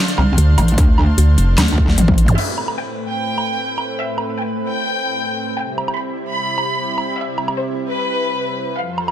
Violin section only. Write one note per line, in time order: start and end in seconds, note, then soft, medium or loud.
2.38 2.65 E5 medium
2.78 2.98 G5 medium
3.08 3.90 G5 medium
3.98 4.25 E5 medium
4.38 4.58 G5 medium
4.68 5.50 G5 medium
5.58 5.85 G5 medium
5.98 6.18 B5 medium
6.28 7.10 B5 medium
7.18 7.45 E5 medium
7.58 7.78 C5 medium
7.88 8.70 B4 medium
8.78 9.05 F5 medium